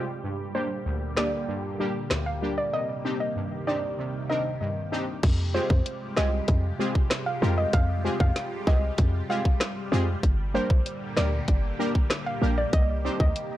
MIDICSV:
0, 0, Header, 1, 6, 480
1, 0, Start_track
1, 0, Tempo, 625000
1, 179, Time_signature, 4, 2, 24, 8
1, 10422, End_track
2, 0, Start_track
2, 0, Title_t, "Synth pluck"
2, 0, Program_c, 0, 84
2, 421, Note_on_c, 0, 72, 87
2, 521, Note_off_c, 0, 72, 0
2, 901, Note_on_c, 0, 74, 83
2, 1001, Note_off_c, 0, 74, 0
2, 1737, Note_on_c, 0, 77, 73
2, 1839, Note_off_c, 0, 77, 0
2, 1979, Note_on_c, 0, 74, 73
2, 2080, Note_off_c, 0, 74, 0
2, 2100, Note_on_c, 0, 75, 109
2, 2201, Note_off_c, 0, 75, 0
2, 2459, Note_on_c, 0, 75, 73
2, 2662, Note_off_c, 0, 75, 0
2, 2820, Note_on_c, 0, 74, 80
2, 3022, Note_off_c, 0, 74, 0
2, 3298, Note_on_c, 0, 75, 77
2, 3400, Note_off_c, 0, 75, 0
2, 4258, Note_on_c, 0, 72, 90
2, 4360, Note_off_c, 0, 72, 0
2, 4738, Note_on_c, 0, 75, 90
2, 4840, Note_off_c, 0, 75, 0
2, 5578, Note_on_c, 0, 77, 75
2, 5680, Note_off_c, 0, 77, 0
2, 5819, Note_on_c, 0, 75, 74
2, 5920, Note_off_c, 0, 75, 0
2, 5940, Note_on_c, 0, 77, 104
2, 6041, Note_off_c, 0, 77, 0
2, 6300, Note_on_c, 0, 77, 79
2, 6502, Note_off_c, 0, 77, 0
2, 6661, Note_on_c, 0, 75, 83
2, 6863, Note_off_c, 0, 75, 0
2, 7141, Note_on_c, 0, 77, 83
2, 7241, Note_off_c, 0, 77, 0
2, 8101, Note_on_c, 0, 72, 92
2, 8201, Note_off_c, 0, 72, 0
2, 8579, Note_on_c, 0, 74, 86
2, 8680, Note_off_c, 0, 74, 0
2, 9419, Note_on_c, 0, 77, 77
2, 9520, Note_off_c, 0, 77, 0
2, 9659, Note_on_c, 0, 74, 73
2, 9760, Note_off_c, 0, 74, 0
2, 9779, Note_on_c, 0, 75, 109
2, 9880, Note_off_c, 0, 75, 0
2, 10140, Note_on_c, 0, 75, 76
2, 10342, Note_off_c, 0, 75, 0
2, 10422, End_track
3, 0, Start_track
3, 0, Title_t, "Synth stab"
3, 0, Program_c, 1, 62
3, 182, Note_on_c, 1, 43, 85
3, 420, Note_on_c, 1, 55, 76
3, 420, Note_on_c, 1, 58, 74
3, 421, Note_on_c, 1, 62, 72
3, 421, Note_on_c, 1, 67, 83
3, 515, Note_off_c, 1, 55, 0
3, 516, Note_off_c, 1, 58, 0
3, 516, Note_off_c, 1, 62, 0
3, 516, Note_off_c, 1, 67, 0
3, 538, Note_off_c, 1, 43, 0
3, 659, Note_on_c, 1, 38, 85
3, 898, Note_on_c, 1, 55, 72
3, 899, Note_on_c, 1, 58, 67
3, 899, Note_on_c, 1, 62, 66
3, 900, Note_on_c, 1, 67, 84
3, 995, Note_off_c, 1, 55, 0
3, 995, Note_off_c, 1, 58, 0
3, 995, Note_off_c, 1, 62, 0
3, 995, Note_off_c, 1, 67, 0
3, 1016, Note_off_c, 1, 38, 0
3, 1139, Note_on_c, 1, 43, 86
3, 1380, Note_on_c, 1, 58, 82
3, 1381, Note_on_c, 1, 55, 90
3, 1381, Note_on_c, 1, 62, 83
3, 1382, Note_on_c, 1, 67, 96
3, 1476, Note_off_c, 1, 55, 0
3, 1476, Note_off_c, 1, 58, 0
3, 1476, Note_off_c, 1, 62, 0
3, 1476, Note_off_c, 1, 67, 0
3, 1496, Note_off_c, 1, 43, 0
3, 1621, Note_on_c, 1, 38, 69
3, 1860, Note_on_c, 1, 55, 73
3, 1861, Note_on_c, 1, 58, 64
3, 1861, Note_on_c, 1, 62, 65
3, 1862, Note_on_c, 1, 67, 78
3, 1955, Note_off_c, 1, 55, 0
3, 1956, Note_off_c, 1, 58, 0
3, 1956, Note_off_c, 1, 62, 0
3, 1956, Note_off_c, 1, 67, 0
3, 1977, Note_off_c, 1, 38, 0
3, 2101, Note_on_c, 1, 48, 71
3, 2340, Note_on_c, 1, 60, 78
3, 2340, Note_on_c, 1, 62, 71
3, 2341, Note_on_c, 1, 63, 71
3, 2341, Note_on_c, 1, 67, 82
3, 2435, Note_off_c, 1, 60, 0
3, 2436, Note_off_c, 1, 62, 0
3, 2436, Note_off_c, 1, 63, 0
3, 2436, Note_off_c, 1, 67, 0
3, 2457, Note_off_c, 1, 48, 0
3, 2579, Note_on_c, 1, 43, 74
3, 2820, Note_on_c, 1, 60, 73
3, 2821, Note_on_c, 1, 62, 65
3, 2821, Note_on_c, 1, 63, 66
3, 2821, Note_on_c, 1, 67, 78
3, 2915, Note_off_c, 1, 60, 0
3, 2916, Note_off_c, 1, 62, 0
3, 2916, Note_off_c, 1, 63, 0
3, 2916, Note_off_c, 1, 67, 0
3, 2936, Note_off_c, 1, 43, 0
3, 3061, Note_on_c, 1, 48, 75
3, 3301, Note_on_c, 1, 60, 73
3, 3302, Note_on_c, 1, 63, 68
3, 3303, Note_on_c, 1, 62, 69
3, 3303, Note_on_c, 1, 70, 84
3, 3396, Note_off_c, 1, 60, 0
3, 3397, Note_off_c, 1, 62, 0
3, 3397, Note_off_c, 1, 63, 0
3, 3397, Note_off_c, 1, 70, 0
3, 3417, Note_off_c, 1, 48, 0
3, 3541, Note_on_c, 1, 43, 84
3, 3779, Note_on_c, 1, 60, 83
3, 3779, Note_on_c, 1, 62, 78
3, 3780, Note_on_c, 1, 63, 83
3, 3780, Note_on_c, 1, 67, 93
3, 3875, Note_off_c, 1, 60, 0
3, 3875, Note_off_c, 1, 62, 0
3, 3875, Note_off_c, 1, 63, 0
3, 3876, Note_off_c, 1, 67, 0
3, 3897, Note_off_c, 1, 43, 0
3, 4259, Note_on_c, 1, 56, 83
3, 4259, Note_on_c, 1, 60, 76
3, 4260, Note_on_c, 1, 65, 73
3, 4260, Note_on_c, 1, 67, 73
3, 4260, Note_on_c, 1, 68, 89
3, 4355, Note_off_c, 1, 56, 0
3, 4355, Note_off_c, 1, 60, 0
3, 4355, Note_off_c, 1, 65, 0
3, 4355, Note_off_c, 1, 67, 0
3, 4355, Note_off_c, 1, 68, 0
3, 4738, Note_on_c, 1, 60, 68
3, 4739, Note_on_c, 1, 56, 78
3, 4739, Note_on_c, 1, 65, 72
3, 4739, Note_on_c, 1, 67, 70
3, 4740, Note_on_c, 1, 68, 81
3, 4835, Note_off_c, 1, 56, 0
3, 4835, Note_off_c, 1, 60, 0
3, 4835, Note_off_c, 1, 65, 0
3, 4835, Note_off_c, 1, 67, 0
3, 4835, Note_off_c, 1, 68, 0
3, 5217, Note_on_c, 1, 60, 86
3, 5218, Note_on_c, 1, 56, 91
3, 5218, Note_on_c, 1, 65, 85
3, 5218, Note_on_c, 1, 68, 102
3, 5219, Note_on_c, 1, 67, 85
3, 5314, Note_off_c, 1, 56, 0
3, 5314, Note_off_c, 1, 60, 0
3, 5314, Note_off_c, 1, 65, 0
3, 5314, Note_off_c, 1, 68, 0
3, 5315, Note_off_c, 1, 67, 0
3, 5697, Note_on_c, 1, 56, 72
3, 5697, Note_on_c, 1, 60, 66
3, 5698, Note_on_c, 1, 65, 72
3, 5698, Note_on_c, 1, 70, 80
3, 5699, Note_on_c, 1, 67, 73
3, 5794, Note_off_c, 1, 56, 0
3, 5794, Note_off_c, 1, 60, 0
3, 5794, Note_off_c, 1, 65, 0
3, 5794, Note_off_c, 1, 70, 0
3, 5795, Note_off_c, 1, 67, 0
3, 6178, Note_on_c, 1, 60, 75
3, 6178, Note_on_c, 1, 65, 77
3, 6179, Note_on_c, 1, 56, 80
3, 6179, Note_on_c, 1, 67, 75
3, 6179, Note_on_c, 1, 68, 88
3, 6274, Note_off_c, 1, 65, 0
3, 6275, Note_off_c, 1, 56, 0
3, 6275, Note_off_c, 1, 60, 0
3, 6275, Note_off_c, 1, 67, 0
3, 6275, Note_off_c, 1, 68, 0
3, 6658, Note_on_c, 1, 65, 70
3, 6659, Note_on_c, 1, 56, 75
3, 6659, Note_on_c, 1, 60, 69
3, 6660, Note_on_c, 1, 67, 69
3, 6660, Note_on_c, 1, 68, 85
3, 6755, Note_off_c, 1, 56, 0
3, 6755, Note_off_c, 1, 60, 0
3, 6755, Note_off_c, 1, 65, 0
3, 6755, Note_off_c, 1, 67, 0
3, 6755, Note_off_c, 1, 68, 0
3, 7139, Note_on_c, 1, 56, 82
3, 7140, Note_on_c, 1, 60, 70
3, 7140, Note_on_c, 1, 65, 69
3, 7140, Note_on_c, 1, 68, 88
3, 7141, Note_on_c, 1, 67, 74
3, 7235, Note_off_c, 1, 56, 0
3, 7235, Note_off_c, 1, 60, 0
3, 7235, Note_off_c, 1, 68, 0
3, 7236, Note_off_c, 1, 65, 0
3, 7236, Note_off_c, 1, 67, 0
3, 7618, Note_on_c, 1, 56, 94
3, 7618, Note_on_c, 1, 65, 82
3, 7619, Note_on_c, 1, 60, 80
3, 7619, Note_on_c, 1, 67, 84
3, 7619, Note_on_c, 1, 68, 100
3, 7714, Note_off_c, 1, 56, 0
3, 7715, Note_off_c, 1, 60, 0
3, 7715, Note_off_c, 1, 65, 0
3, 7715, Note_off_c, 1, 67, 0
3, 7715, Note_off_c, 1, 68, 0
3, 8096, Note_on_c, 1, 55, 82
3, 8096, Note_on_c, 1, 58, 70
3, 8097, Note_on_c, 1, 62, 74
3, 8097, Note_on_c, 1, 67, 74
3, 8098, Note_on_c, 1, 70, 87
3, 8193, Note_off_c, 1, 55, 0
3, 8194, Note_off_c, 1, 58, 0
3, 8194, Note_off_c, 1, 62, 0
3, 8194, Note_off_c, 1, 67, 0
3, 8194, Note_off_c, 1, 70, 0
3, 8579, Note_on_c, 1, 55, 74
3, 8579, Note_on_c, 1, 58, 72
3, 8580, Note_on_c, 1, 62, 67
3, 8580, Note_on_c, 1, 67, 71
3, 8580, Note_on_c, 1, 70, 82
3, 8675, Note_off_c, 1, 55, 0
3, 8675, Note_off_c, 1, 58, 0
3, 8675, Note_off_c, 1, 67, 0
3, 8676, Note_off_c, 1, 62, 0
3, 8676, Note_off_c, 1, 70, 0
3, 9056, Note_on_c, 1, 55, 92
3, 9056, Note_on_c, 1, 58, 86
3, 9056, Note_on_c, 1, 62, 84
3, 9057, Note_on_c, 1, 67, 84
3, 9057, Note_on_c, 1, 70, 105
3, 9153, Note_off_c, 1, 58, 0
3, 9154, Note_off_c, 1, 55, 0
3, 9154, Note_off_c, 1, 62, 0
3, 9154, Note_off_c, 1, 67, 0
3, 9154, Note_off_c, 1, 70, 0
3, 9537, Note_on_c, 1, 55, 77
3, 9537, Note_on_c, 1, 58, 68
3, 9537, Note_on_c, 1, 62, 68
3, 9538, Note_on_c, 1, 67, 66
3, 9538, Note_on_c, 1, 70, 88
3, 9634, Note_off_c, 1, 55, 0
3, 9634, Note_off_c, 1, 58, 0
3, 9634, Note_off_c, 1, 62, 0
3, 9634, Note_off_c, 1, 67, 0
3, 9634, Note_off_c, 1, 70, 0
3, 10019, Note_on_c, 1, 62, 75
3, 10019, Note_on_c, 1, 63, 77
3, 10020, Note_on_c, 1, 60, 77
3, 10020, Note_on_c, 1, 67, 75
3, 10021, Note_on_c, 1, 72, 85
3, 10115, Note_off_c, 1, 60, 0
3, 10115, Note_off_c, 1, 62, 0
3, 10115, Note_off_c, 1, 63, 0
3, 10115, Note_off_c, 1, 67, 0
3, 10116, Note_off_c, 1, 72, 0
3, 10422, End_track
4, 0, Start_track
4, 0, Title_t, "Analog synth pad"
4, 0, Program_c, 2, 89
4, 0, Note_on_c, 2, 48, 78
4, 0, Note_on_c, 2, 55, 71
4, 0, Note_on_c, 2, 56, 69
4, 0, Note_on_c, 2, 65, 70
4, 0, Note_on_c, 2, 67, 82
4, 149, Note_off_c, 2, 48, 0
4, 149, Note_off_c, 2, 56, 0
4, 149, Note_off_c, 2, 65, 0
4, 178, Note_on_c, 2, 46, 77
4, 178, Note_on_c, 2, 50, 70
4, 178, Note_on_c, 2, 58, 68
4, 2079, Note_off_c, 2, 46, 0
4, 2079, Note_off_c, 2, 50, 0
4, 2099, Note_on_c, 2, 48, 76
4, 2100, Note_on_c, 2, 51, 73
4, 3988, Note_off_c, 2, 55, 0
4, 3988, Note_off_c, 2, 58, 0
4, 3988, Note_off_c, 2, 67, 0
4, 4000, Note_off_c, 2, 48, 0
4, 4000, Note_off_c, 2, 51, 0
4, 4019, Note_on_c, 2, 67, 90
4, 4020, Note_on_c, 2, 48, 82
4, 4020, Note_on_c, 2, 55, 74
4, 4020, Note_on_c, 2, 56, 74
4, 4021, Note_on_c, 2, 65, 72
4, 7828, Note_off_c, 2, 67, 0
4, 7829, Note_off_c, 2, 48, 0
4, 7829, Note_off_c, 2, 56, 0
4, 7829, Note_off_c, 2, 65, 0
4, 7857, Note_on_c, 2, 58, 73
4, 7857, Note_on_c, 2, 67, 87
4, 7858, Note_on_c, 2, 46, 79
4, 7858, Note_on_c, 2, 50, 75
4, 9759, Note_off_c, 2, 46, 0
4, 9759, Note_off_c, 2, 50, 0
4, 9777, Note_on_c, 2, 48, 79
4, 9778, Note_on_c, 2, 51, 76
4, 10422, Note_off_c, 2, 48, 0
4, 10422, Note_off_c, 2, 51, 0
4, 10422, Note_off_c, 2, 55, 0
4, 10422, Note_off_c, 2, 58, 0
4, 10422, Note_off_c, 2, 67, 0
4, 10422, End_track
5, 0, Start_track
5, 0, Title_t, "808-style bass"
5, 0, Program_c, 3, 38
5, 4019, Note_on_c, 3, 41, 119
5, 4295, Note_off_c, 3, 41, 0
5, 4378, Note_on_c, 3, 41, 95
5, 4470, Note_off_c, 3, 41, 0
5, 4739, Note_on_c, 3, 36, 96
5, 4923, Note_off_c, 3, 36, 0
5, 4979, Note_on_c, 3, 41, 108
5, 5163, Note_off_c, 3, 41, 0
5, 5699, Note_on_c, 3, 41, 95
5, 5883, Note_off_c, 3, 41, 0
5, 5939, Note_on_c, 3, 41, 112
5, 6215, Note_off_c, 3, 41, 0
5, 6298, Note_on_c, 3, 41, 90
5, 6390, Note_off_c, 3, 41, 0
5, 6659, Note_on_c, 3, 36, 101
5, 6843, Note_off_c, 3, 36, 0
5, 6900, Note_on_c, 3, 41, 108
5, 7083, Note_off_c, 3, 41, 0
5, 7618, Note_on_c, 3, 41, 88
5, 7802, Note_off_c, 3, 41, 0
5, 7859, Note_on_c, 3, 31, 114
5, 8135, Note_off_c, 3, 31, 0
5, 8218, Note_on_c, 3, 34, 97
5, 8311, Note_off_c, 3, 34, 0
5, 8578, Note_on_c, 3, 38, 93
5, 8762, Note_off_c, 3, 38, 0
5, 8818, Note_on_c, 3, 31, 111
5, 9002, Note_off_c, 3, 31, 0
5, 9536, Note_on_c, 3, 34, 81
5, 9721, Note_off_c, 3, 34, 0
5, 9778, Note_on_c, 3, 36, 107
5, 10054, Note_off_c, 3, 36, 0
5, 10137, Note_on_c, 3, 38, 97
5, 10230, Note_off_c, 3, 38, 0
5, 10422, End_track
6, 0, Start_track
6, 0, Title_t, "Drums"
6, 895, Note_on_c, 9, 37, 87
6, 900, Note_on_c, 9, 38, 112
6, 972, Note_off_c, 9, 37, 0
6, 976, Note_off_c, 9, 38, 0
6, 1613, Note_on_c, 9, 37, 97
6, 1618, Note_on_c, 9, 38, 109
6, 1690, Note_off_c, 9, 37, 0
6, 1695, Note_off_c, 9, 38, 0
6, 4019, Note_on_c, 9, 36, 120
6, 4019, Note_on_c, 9, 42, 86
6, 4019, Note_on_c, 9, 49, 101
6, 4095, Note_off_c, 9, 42, 0
6, 4095, Note_off_c, 9, 49, 0
6, 4096, Note_off_c, 9, 36, 0
6, 4378, Note_on_c, 9, 36, 96
6, 4455, Note_off_c, 9, 36, 0
6, 4500, Note_on_c, 9, 42, 80
6, 4577, Note_off_c, 9, 42, 0
6, 4735, Note_on_c, 9, 37, 101
6, 4739, Note_on_c, 9, 38, 120
6, 4811, Note_off_c, 9, 37, 0
6, 4816, Note_off_c, 9, 38, 0
6, 4976, Note_on_c, 9, 42, 80
6, 4979, Note_on_c, 9, 36, 87
6, 5053, Note_off_c, 9, 42, 0
6, 5055, Note_off_c, 9, 36, 0
6, 5339, Note_on_c, 9, 36, 89
6, 5416, Note_off_c, 9, 36, 0
6, 5453, Note_on_c, 9, 37, 104
6, 5458, Note_on_c, 9, 38, 123
6, 5460, Note_on_c, 9, 42, 87
6, 5530, Note_off_c, 9, 37, 0
6, 5535, Note_off_c, 9, 38, 0
6, 5537, Note_off_c, 9, 42, 0
6, 5939, Note_on_c, 9, 36, 122
6, 5939, Note_on_c, 9, 42, 88
6, 6016, Note_off_c, 9, 36, 0
6, 6016, Note_off_c, 9, 42, 0
6, 6298, Note_on_c, 9, 36, 91
6, 6375, Note_off_c, 9, 36, 0
6, 6420, Note_on_c, 9, 38, 72
6, 6421, Note_on_c, 9, 42, 84
6, 6497, Note_off_c, 9, 38, 0
6, 6498, Note_off_c, 9, 42, 0
6, 6659, Note_on_c, 9, 36, 101
6, 6736, Note_off_c, 9, 36, 0
6, 6897, Note_on_c, 9, 42, 82
6, 6899, Note_on_c, 9, 36, 95
6, 6974, Note_off_c, 9, 42, 0
6, 6976, Note_off_c, 9, 36, 0
6, 7259, Note_on_c, 9, 36, 89
6, 7336, Note_off_c, 9, 36, 0
6, 7373, Note_on_c, 9, 37, 104
6, 7378, Note_on_c, 9, 38, 123
6, 7380, Note_on_c, 9, 42, 88
6, 7450, Note_off_c, 9, 37, 0
6, 7455, Note_off_c, 9, 38, 0
6, 7457, Note_off_c, 9, 42, 0
6, 7859, Note_on_c, 9, 36, 120
6, 7860, Note_on_c, 9, 42, 85
6, 7936, Note_off_c, 9, 36, 0
6, 7936, Note_off_c, 9, 42, 0
6, 8218, Note_on_c, 9, 36, 97
6, 8295, Note_off_c, 9, 36, 0
6, 8341, Note_on_c, 9, 42, 81
6, 8417, Note_off_c, 9, 42, 0
6, 8575, Note_on_c, 9, 37, 101
6, 8580, Note_on_c, 9, 38, 121
6, 8652, Note_off_c, 9, 37, 0
6, 8657, Note_off_c, 9, 38, 0
6, 8816, Note_on_c, 9, 42, 83
6, 8818, Note_on_c, 9, 36, 96
6, 8893, Note_off_c, 9, 42, 0
6, 8895, Note_off_c, 9, 36, 0
6, 9178, Note_on_c, 9, 36, 86
6, 9255, Note_off_c, 9, 36, 0
6, 9292, Note_on_c, 9, 37, 103
6, 9296, Note_on_c, 9, 38, 123
6, 9298, Note_on_c, 9, 42, 88
6, 9368, Note_off_c, 9, 37, 0
6, 9373, Note_off_c, 9, 38, 0
6, 9375, Note_off_c, 9, 42, 0
6, 9777, Note_on_c, 9, 42, 85
6, 9778, Note_on_c, 9, 36, 120
6, 9854, Note_off_c, 9, 42, 0
6, 9855, Note_off_c, 9, 36, 0
6, 10137, Note_on_c, 9, 36, 95
6, 10214, Note_off_c, 9, 36, 0
6, 10259, Note_on_c, 9, 42, 82
6, 10336, Note_off_c, 9, 42, 0
6, 10422, End_track
0, 0, End_of_file